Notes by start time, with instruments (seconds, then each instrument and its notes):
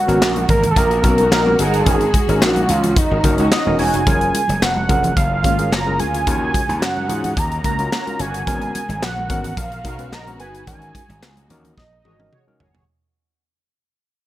Already playing: string section C#3 B3 F#4 A#4, analog synth lead F#4
0.08 slap bass G#1, tine electric piano B3 C#4 F#4 A#4, closed hi-hat, high conga
0.21 slap bass A#1, snare, clap
0.36 closed hi-hat, high conga
0.49 slap bass G#1, analog synth lead A#4, kick, closed hi-hat, muted conga, low conga
0.63 closed hi-hat, low conga
0.71 analog synth lead A4
0.76 slap bass A#1, analog synth lead A#4, kick, closed hi-hat, muted conga
0.90 tine electric piano F#4 A#4, closed hi-hat
1.03 slap bass B1, tine electric piano B3 C#4 F#4 A#4, kick, closed hi-hat, muted conga
1.18 analog polysynth D#4 F#4 A#4, closed hi-hat, high conga
1.31 slap bass A#1, analog polysynth D#4 F#4 A#4, analog synth lead A#4, snare, clap, muted conga
1.46 tine electric piano B3 C#4 F#4 A#4, high conga
1.59 slap bass G1, analog polysynth D#4 F#4 A#4, analog synth lead G#4, closed hi-hat, muted conga
1.74 closed hi-hat
1.86 slap bass G#1, string section D#3 G#3 C#4, tine electric piano C#4 D#4 F#4 A#4, kick, closed hi-hat, low conga
2.01 closed hi-hat
2.14 kick, closed hi-hat, muted conga, high conga
2.28 slap bass G#1, tine electric piano C#4 D#4 F#4 A#4, closed hi-hat, high conga
2.42 slap bass A#1, analog synth lead F#4, snare, clap
2.56 closed hi-hat, high conga
2.69 slap bass C#2, analog synth lead F4, closed hi-hat, muted conga, low conga
2.84 closed hi-hat, low conga
2.96 analog synth lead D#4, kick, closed hi-hat
3.11 slap bass G#1, tine electric piano F#4 A#4
3.23 slap bass F#1, tine electric piano C#4 D#4 F#4 A#4, kick, closed hi-hat, muted conga
3.38 slap bass C#2, analog polysynth C#4 D#4 F#4, closed hi-hat, high conga
3.52 analog polysynth C#4 D#4 F#4, analog synth lead D#5, snare, clap
3.66 slap bass D#1, tine electric piano C#4 D#4 F#4 A#4, high conga
3.79 slap bass E1, analog polysynth C#4 D#4 F#4, analog synth lead G#5, open hi-hat
3.94 slap bass F1, closed hi-hat
4.06 slap bass F#1, string section C#3 F#3 A#3 C#4, tine electric piano C#4 F4 G#4 A#4, kick, closed hi-hat, low conga
4.21 closed hi-hat
4.35 closed hi-hat, muted conga, high conga
4.48 slap bass F#1, closed hi-hat, high conga
4.62 slap bass F1, analog synth lead F#5, snare, clap, muted conga
4.77 high conga
4.89 slap bass F1, tine electric piano C#4 F4 G#4 A#4, kick, closed hi-hat, muted conga, low conga
5.03 closed hi-hat, low conga
5.16 slap bass F#1, analog synth lead F5, kick, closed hi-hat
5.43 slap bass G#1, analog polysynth A#3 C#4 F4, tine electric piano G#4 C#5, kick, closed hi-hat, muted conga
5.58 tine electric piano C#4 F4 G#4 A#4, closed hi-hat, high conga
5.72 slap bass F#1, analog polysynth A#3 C#4 F4, analog synth lead A#5, snare, clap, muted conga
5.86 tine electric piano C#4 F4 G#4 A#4, high conga
5.99 slap bass D2, analog polysynth A#3 C#4 F4, analog synth lead G#5, closed hi-hat
6.14 closed hi-hat
6.27 slap bass D#2, tine electric piano C#4 F4 F#4 A#4, string section D#4, kick, closed hi-hat, muted conga, low conga
6.54 kick, closed hi-hat, muted conga, high conga
6.68 slap bass D#2, closed hi-hat, high conga
6.82 slap bass F#2, analog synth lead F#5, snare, clap, muted conga
6.97 high conga
7.09 slap bass G#2, tine electric piano C#4 F4 F#4 G#4, closed hi-hat, low conga
7.24 closed hi-hat, low conga
7.37 slap bass D#2, analog synth lead A#5, kick, closed hi-hat
7.52 closed hi-hat
7.64 slap bass C#2, analog polysynth A#3 C#4 F#4, tine electric piano F#4 A#4, analog synth lead A#5, kick, closed hi-hat, muted conga
7.78 tine electric piano C#4 F4 F#4 A#4, closed hi-hat, high conga
7.91 analog polysynth A#3 C#4 F#4, analog synth lead A#5, snare, clap, muted conga
8.06 tine electric piano C#4 F4 F#4 A#4, closed hi-hat, high conga
8.19 slap bass G1, analog polysynth A#3 C#4 F#4, analog synth lead G#5, closed hi-hat
8.34 closed hi-hat
8.47 slap bass G#1, tine electric piano B3 C#4 F#4 A#4, string section B3 F#4 A#4, kick, closed hi-hat, low conga
8.62 closed hi-hat
8.75 closed hi-hat, muted conga, high conga
8.89 slap bass G#1, closed hi-hat, high conga
9.02 slap bass A#1, analog synth lead F#5, snare, clap, muted conga
9.17 high conga
9.29 slap bass G#1, tine electric piano B3 C#4 F#4 A#4, kick, closed hi-hat, muted conga, low conga
9.44 closed hi-hat, low conga
9.57 slap bass A#1, analog synth lead F5, kick, closed hi-hat
9.72 closed hi-hat
9.84 slap bass B1, analog polysynth D#4 F#4 A#4, tine electric piano F#4 A#4, kick, closed hi-hat, muted conga
9.98 tine electric piano B3 C#4 F#4 B4, closed hi-hat, high conga
10.12 slap bass A#1, analog polysynth D#4 F#4 A#4, analog synth lead A#5, snare, clap, muted conga
10.27 tine electric piano B3 C#4 F#4 A#4, closed hi-hat, high conga
10.39 slap bass G1, analog polysynth D#4 F#4 B4, analog synth lead G#5, closed hi-hat, muted conga
10.55 closed hi-hat
10.67 slap bass G#1, string section G#3 D#4, tine electric piano C#4 D#4 F#4 A#4, analog synth lead G#5, kick, closed hi-hat, low conga
10.82 closed hi-hat
10.95 kick, closed hi-hat, muted conga, high conga
11.09 slap bass G#1, closed hi-hat, high conga
11.22 slap bass C#2, snare, clap
11.37 closed hi-hat, high conga
11.50 slap bass D#2, tine electric piano C#4 D#4 F#4 A#4, closed hi-hat, muted conga, low conga
11.64 closed hi-hat, low conga
11.78 slap bass A#1, analog synth lead D#5, kick, snare, muted conga
12.04 slap bass G#1, analog polysynth F#4 G#4 C#5, tine electric piano F#4 A#4, high tom, muted conga
12.19 tine electric piano C#4 D#4 F#4 A#4, high tom, high conga
12.32 analog polysynth F#4 G#4 C#5, mid tom, muted conga
12.47 tine electric piano C#4 D#4 F#4 A#4, high conga
12.60 slap bass G1, analog polysynth F#4 G#4 C#5, floor tom, muted conga
12.75 floor tom